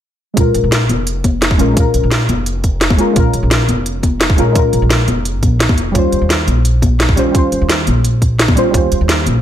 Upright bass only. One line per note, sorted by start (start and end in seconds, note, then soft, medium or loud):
0.37 0.53 A#1 medium
0.54 0.63 A#1 medium
0.64 0.88 A#1 medium
0.90 1.58 F1 medium
1.59 1.93 A#1 medium
1.94 2.02 A#1 medium
2.03 2.28 A#1 medium
2.29 2.98 F1 medium
3.16 3.32 A#1 medium
3.34 3.42 A#1 medium
3.43 3.67 A#1 medium
3.69 4.37 F1 medium
4.38 4.72 A#1 medium
4.73 4.81 A#1 medium
4.82 5.07 A#1 medium
5.08 5.43 F1 medium
5.43 5.77 A#1 medium
5.77 5.93 F1 medium
5.95 6.11 D#2 medium
6.12 6.21 D#2 medium
6.22 6.46 D#2 medium
6.47 7.16 A#1 medium
7.17 7.51 D#2 medium
7.52 7.60 D#2 medium
7.61 7.86 D#2 medium
7.87 8.56 A#1 medium
8.74 8.90 D#2 medium
8.92 9.00 D#2 medium
9.01 9.25 D#2 medium
9.27 9.42 A#1 medium